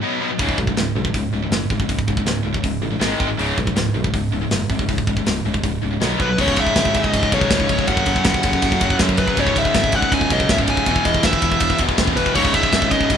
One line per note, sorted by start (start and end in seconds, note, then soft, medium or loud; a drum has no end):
0.02 0.19 B2 medium
0.02 0.20 F#3 medium
0.02 0.20 B3 medium
0.21 0.29 B2 medium
0.21 0.29 F#3 medium
0.21 0.30 B3 loud
0.30 0.39 B2 medium
0.30 0.39 F#3 medium
0.39 0.52 C#1 medium
0.39 0.57 C#2 medium
0.39 0.57 G#2 medium
0.39 0.58 C#3 medium
0.39 kick loud
0.39 open hi-hat medium
0.49 kick medium
0.58 0.71 B1 medium
0.58 0.67 C#2 medium
0.58 0.67 G#2 medium
0.58 kick medium
0.67 0.76 C#2 medium
0.67 0.77 G#2 medium
0.67 kick medium
0.77 0.90 C#1 medium
0.77 0.94 C#2 medium
0.77 0.94 G#2 medium
0.77 snare loud
0.77 open hi-hat medium
0.95 1.08 B1 medium
0.95 1.04 C#2 medium
0.95 1.04 G#2 medium
1.05 1.14 C#2 medium
1.05 1.14 G#2 medium
1.05 kick medium
1.14 1.27 C#1 medium
1.14 1.31 C#2 medium
1.14 1.31 G#2 medium
1.14 kick loud
1.14 open hi-hat medium
1.33 1.46 C#1 medium
1.33 1.42 C#2 medium
1.33 1.42 G#2 medium
1.43 1.51 C#2 medium
1.43 1.51 G#2 medium
1.51 1.64 F#1 medium
1.51 1.69 C#2 medium
1.51 1.69 G#2 medium
1.51 snare loud
1.51 open hi-hat medium
1.70 1.83 G#1 medium
1.70 1.79 C#2 medium
1.70 1.78 G#2 medium
1.70 kick medium
1.80 1.88 C#2 medium
1.80 1.89 G#2 medium
1.80 kick medium
1.89 2.02 C#1 medium
1.89 2.06 C#2 medium
1.89 2.06 G#2 medium
1.89 kick medium
1.89 open hi-hat medium
1.99 kick medium
2.08 2.21 C#1 medium
2.08 2.18 C#2 medium
2.08 2.17 G#2 medium
2.08 kick medium
2.17 2.25 C#2 medium
2.17 2.26 G#2 medium
2.17 kick medium
2.26 2.39 C#1 medium
2.26 2.43 C#2 medium
2.26 2.44 G#2 medium
2.26 snare loud
2.26 open hi-hat medium
2.45 2.58 C#1 medium
2.45 2.54 C#2 medium
2.45 2.54 G#2 medium
2.54 2.63 C#2 medium
2.54 2.63 G#2 medium
2.54 kick medium
2.64 2.77 C#1 medium
2.64 2.81 C#2 medium
2.64 2.81 G#2 medium
2.64 kick loud
2.64 open hi-hat medium
2.82 2.95 A1 medium
2.82 2.91 C#2 medium
2.82 2.90 G#2 medium
2.92 2.99 C#2 medium
2.92 2.99 G#2 medium
3.00 3.14 G#1 medium
3.00 3.18 G#2 medium
3.00 3.19 D#3 medium
3.00 3.19 G#3 loud
3.00 snare loud
3.00 open hi-hat medium
3.19 3.33 G#1 medium
3.19 3.27 G#2 medium
3.19 3.27 D#3 medium
3.19 3.28 G#3 loud
3.19 kick loud
3.28 3.37 G#2 medium
3.28 3.38 D#3 medium
3.38 3.51 C#1 medium
3.38 3.56 C#2 medium
3.38 3.56 G#2 loud
3.38 3.57 C#3 loud
3.38 open hi-hat medium
3.57 3.71 B1 medium
3.57 3.65 C#2 medium
3.57 3.65 G#2 medium
3.57 kick medium
3.66 3.75 C#2 medium
3.66 3.74 G#2 medium
3.66 kick medium
3.75 3.88 C#1 medium
3.75 3.93 C#2 medium
3.75 3.93 G#2 medium
3.75 snare loud
3.75 open hi-hat medium
3.94 4.08 B1 medium
3.94 4.04 C#2 medium
3.94 4.03 G#2 medium
4.04 4.12 C#2 medium
4.04 4.13 G#2 medium
4.04 kick medium
4.13 4.26 C#1 medium
4.13 4.31 C#2 medium
4.13 4.31 G#2 medium
4.13 kick medium
4.13 open hi-hat medium
4.32 4.45 C#1 medium
4.32 4.41 C#2 medium
4.32 4.40 G#2 medium
4.41 4.50 C#2 medium
4.41 4.50 G#2 medium
4.51 4.64 F#1 medium
4.51 4.68 C#2 medium
4.51 4.68 G#2 medium
4.51 snare loud
4.51 open hi-hat medium
4.70 4.83 G#1 medium
4.70 4.79 C#2 medium
4.70 4.79 G#2 medium
4.70 kick medium
4.79 4.88 C#2 medium
4.79 4.89 G#2 medium
4.79 kick medium
4.89 5.02 C#1 medium
4.89 5.06 C#2 medium
4.89 5.06 G#2 medium
4.89 kick medium
4.89 open hi-hat medium
4.98 kick medium
5.07 5.20 C#1 medium
5.07 5.17 C#2 medium
5.07 5.17 G#2 medium
5.07 kick medium
5.17 5.24 C#2 medium
5.17 5.25 G#2 medium
5.17 kick medium
5.26 5.39 C#1 medium
5.26 5.43 C#2 medium
5.26 5.43 G#2 medium
5.26 snare loud
5.26 open hi-hat medium
5.45 5.58 C#1 medium
5.45 5.52 C#2 medium
5.45 5.52 G#2 medium
5.54 5.62 C#2 medium
5.54 5.62 G#2 medium
5.54 kick medium
5.63 5.76 C#1 medium
5.63 5.80 C#2 medium
5.63 5.80 G#2 medium
5.63 kick loud
5.63 open hi-hat medium
5.82 5.96 C#1 medium
5.82 5.90 C#2 medium
5.82 5.90 G#2 medium
5.91 6.00 C#2 medium
5.91 6.00 G#2 medium
6.00 6.14 B1 medium
6.00 6.18 B2 medium
6.00 6.18 F#3 medium
6.00 6.19 B3 medium
6.00 snare loud
6.00 open hi-hat medium
6.19 6.33 B1 medium
6.19 6.28 B2 medium
6.19 6.27 F#3 medium
6.19 6.28 B3 loud
6.19 6.39 B4 medium
6.19 kick loud
6.29 6.37 B2 medium
6.29 6.38 F#3 medium
6.37 6.64 C#1 medium
6.37 7.30 C#2 medium
6.37 6.57 C#2 medium
6.37 7.31 G#2 medium
6.37 6.57 G#2 loud
6.37 6.57 C#3 medium
6.37 7.87 C#3 medium
6.37 7.30 C#3 loud
6.37 7.88 G#3 medium
6.37 7.85 C#4 medium
6.37 7.88 E4 medium
6.37 6.60 C#5 medium
6.37 kick medium
6.37 crash loud
6.48 kick medium
6.56 6.75 C#2 medium
6.56 6.76 G#2 medium
6.56 6.76 C#3 medium
6.56 6.97 E5 medium
6.56 kick medium
6.56 ride medium
6.67 kick medium
6.76 7.01 G#1 medium
6.76 6.93 C#2 medium
6.76 6.94 G#2 loud
6.76 6.95 C#3 loud
6.76 kick medium
6.76 snare loud
6.76 ride loud
6.85 kick medium
6.94 7.13 C#2 medium
6.94 7.13 G#2 medium
6.94 7.14 C#3 medium
6.94 7.31 D#5 medium
6.94 kick medium
6.94 ride medium
7.04 kick medium
7.13 7.26 C#1 loud
7.13 7.31 C#2 loud
7.13 7.32 G#2 loud
7.13 7.32 C#3 loud
7.13 kick medium
7.13 ride loud
7.23 kick medium
7.31 7.45 B1 medium
7.31 7.50 C#2 medium
7.31 7.49 C#2 medium
7.31 7.51 G#2 medium
7.31 7.50 G#2 medium
7.31 7.49 C#3 medium
7.31 7.51 C#3 medium
7.31 7.88 C#5 medium
7.31 kick medium
7.31 ride medium
7.41 kick loud
7.50 7.76 C#1 medium
7.50 7.87 C#2 medium
7.50 7.69 C#2 medium
7.50 7.69 G#2 medium
7.50 7.88 G#2 medium
7.50 7.70 C#3 medium
7.50 7.89 C#3 medium
7.50 kick loud
7.50 snare loud
7.50 ride loud
7.60 kick medium
7.69 7.87 C#2 medium
7.69 7.88 G#2 medium
7.69 7.88 C#3 medium
7.69 kick medium
7.69 ride medium
7.79 kick medium
7.86 8.01 F#1 loud
7.86 8.80 F#2 loud
7.86 8.05 F#2 loud
7.86 8.06 C#3 loud
7.86 8.81 C#3 loud
7.86 9.35 F#3 medium
7.86 8.06 F#3 loud
7.86 9.35 C#4 medium
7.86 9.36 G#4 medium
7.86 9.36 A4 medium
7.86 8.96 F#5 loud
7.86 kick medium
7.86 ride loud
7.91 8.79 F#3 loud
7.97 kick medium
8.06 8.19 F#1 medium
8.06 8.24 F#2 medium
8.06 8.25 C#3 medium
8.06 8.25 F#3 medium
8.06 kick medium
8.06 ride medium
8.16 kick medium
8.24 8.38 F#1 loud
8.24 8.43 F#2 medium
8.24 8.44 C#3 loud
8.24 8.44 F#3 loud
8.24 kick loud
8.24 snare loud
8.24 ride loud
8.34 kick medium
8.43 8.57 F#1 medium
8.43 8.62 F#2 medium
8.43 8.62 C#3 medium
8.43 8.63 F#3 medium
8.43 kick medium
8.43 ride medium
8.53 kick medium
8.62 8.75 F#1 loud
8.62 8.80 F#2 loud
8.62 8.81 C#3 loud
8.62 8.81 F#3 loud
8.62 kick medium
8.62 ride loud
8.72 kick medium
8.80 8.94 F#1 medium
8.80 8.99 F#2 medium
8.80 8.98 F#2 medium
8.80 9.00 C#3 medium
8.80 8.99 F#3 medium
8.80 9.00 F#3 medium
8.80 kick loud
8.80 ride medium
8.90 kick medium
8.99 9.36 F#2 medium
8.99 9.25 F#2 loud
8.99 9.18 F#2 medium
8.99 9.18 C#3 loud
8.99 9.37 C#3 medium
8.99 9.19 F#3 loud
8.99 9.38 F#3 medium
8.99 kick medium
8.99 snare loud
8.99 ride loud
9.09 kick medium
9.17 9.36 F#2 medium
9.17 9.37 C#3 medium
9.17 9.37 F#3 loud
9.17 9.39 B4 medium
9.17 kick medium
9.17 ride medium
9.28 kick medium
9.36 9.62 C#1 loud
9.36 10.29 C#2 medium
9.36 9.55 C#2 loud
9.36 9.56 G#2 loud
9.36 10.30 G#2 loud
9.36 10.85 C#3 medium
9.36 9.56 C#3 loud
9.36 10.29 C#3 loud
9.36 10.85 G#3 medium
9.36 10.85 D#4 medium
9.36 10.85 E4 medium
9.36 9.58 C#5 loud
9.36 kick medium
9.36 ride loud
9.47 kick medium
9.56 9.74 C#2 medium
9.56 9.75 G#2 medium
9.56 9.75 C#3 medium
9.56 9.74 E5 loud
9.56 kick medium
9.56 ride medium
9.65 kick medium
9.74 10.00 G#1 loud
9.74 9.93 C#2 loud
9.74 9.93 G#2 loud
9.74 9.93 C#3 loud
9.74 9.95 E5 loud
9.74 kick medium
9.74 snare loud
9.74 ride loud
9.84 kick loud
9.92 10.11 C#2 medium
9.92 10.12 G#2 medium
9.92 10.12 C#3 medium
9.92 10.13 F#5 loud
9.92 kick medium
9.92 ride medium
10.02 kick medium
10.12 10.24 C#1 loud
10.12 10.30 C#2 loud
10.12 10.31 G#2 loud
10.12 10.31 C#3 loud
10.12 10.32 G#5 loud
10.12 kick medium
10.12 ride loud
10.21 kick medium
10.30 10.43 B1 loud
10.30 10.49 C#2 medium
10.30 10.48 C#2 medium
10.30 10.49 G#2 medium
10.30 10.50 G#2 medium
10.30 10.48 C#3 medium
10.30 10.50 C#3 loud
10.30 10.51 D#5 medium
10.30 kick medium
10.30 ride medium
10.40 kick medium
10.49 10.74 C#1 medium
10.49 10.85 C#2 medium
10.49 10.67 C#2 medium
10.49 10.86 G#2 medium
10.49 10.68 G#2 medium
10.49 10.68 C#3 medium
10.49 10.87 C#3 medium
10.49 10.56 E5 loud
10.49 kick medium
10.49 snare loud
10.49 ride loud
10.58 kick medium
10.67 10.86 C#2 medium
10.67 10.86 G#2 medium
10.67 10.86 C#3 loud
10.67 11.08 G#5 loud
10.67 kick medium
10.67 ride medium
10.77 kick medium
10.86 10.99 E1 loud
10.86 11.79 E2 medium
10.86 11.05 E2 loud
10.86 11.05 B2 loud
10.86 11.80 B2 medium
10.86 12.34 E3 medium
10.86 11.06 E3 loud
10.86 11.77 E3 loud
10.86 12.34 B3 medium
10.86 12.34 F#4 medium
10.86 12.34 G#4 medium
10.86 kick medium
10.86 ride loud
10.96 kick medium
11.05 11.18 E1 medium
11.05 11.23 E2 medium
11.05 11.24 B2 medium
11.05 11.25 E3 medium
11.05 11.24 D#5 loud
11.05 kick medium
11.05 ride medium
11.14 kick medium
11.23 11.36 E1 medium
11.23 11.42 E2 medium
11.23 11.42 B2 loud
11.23 11.43 E3 loud
11.23 11.80 E5 medium
11.23 kick medium
11.23 snare loud
11.23 ride loud
11.33 kick loud
11.42 11.55 E1 medium
11.42 11.60 E2 medium
11.42 11.60 B2 medium
11.42 11.61 E3 medium
11.42 kick medium
11.42 ride medium
11.52 kick medium
11.60 11.73 E1 loud
11.60 11.78 E2 loud
11.60 11.79 B2 loud
11.60 11.79 E3 loud
11.60 kick medium
11.60 ride loud
11.70 kick medium
11.78 11.92 E1 medium
11.78 11.97 E2 medium
11.78 11.98 B2 medium
11.78 11.97 E3 medium
11.78 11.98 E3 medium
11.78 kick medium
11.78 ride medium
11.82 11.97 E2 medium
11.89 kick medium
11.98 12.23 D#1 medium
11.98 12.34 E2 medium
11.98 12.16 E2 medium
11.98 12.16 B2 medium
11.98 12.35 B2 medium
11.98 12.16 E3 medium
11.98 12.36 E3 medium
11.98 kick medium
11.98 snare loud
11.98 ride loud
12.07 kick medium
12.17 12.35 E2 medium
12.17 12.35 B2 medium
12.17 12.35 E3 loud
12.17 12.35 B4 medium
12.17 kick medium
12.17 ride medium
12.26 kick medium
12.34 12.61 C#1 loud
12.34 13.17 C#2 medium
12.34 12.53 C#2 loud
12.34 12.53 G#2 loud
12.34 13.17 G#2 loud
12.34 13.17 C#3 medium
12.34 12.54 C#3 loud
12.34 13.17 G#3 medium
12.34 13.17 C#4 medium
12.34 13.17 E4 medium
12.34 12.54 C#5 medium
12.34 kick medium
12.34 crash loud
12.39 13.17 C#3 loud
12.45 kick medium
12.54 12.72 C#2 medium
12.54 12.72 G#2 medium
12.54 12.73 C#3 medium
12.54 12.91 E5 loud
12.54 kick medium
12.54 ride medium
12.63 kick medium
12.73 12.98 G#1 medium
12.73 12.90 C#2 medium
12.73 12.91 G#2 medium
12.73 12.91 C#3 medium
12.73 kick medium
12.73 snare loud
12.73 ride loud
12.82 kick loud
12.91 13.10 C#2 medium
12.91 13.10 G#2 medium
12.91 13.11 C#3 medium
12.91 13.17 D#5 medium
12.91 kick medium
12.91 ride medium
13.01 kick medium
13.10 13.17 C#1 loud
13.10 13.17 C#2 loud
13.10 13.17 G#2 loud
13.10 13.17 C#3 loud
13.10 kick medium
13.10 ride loud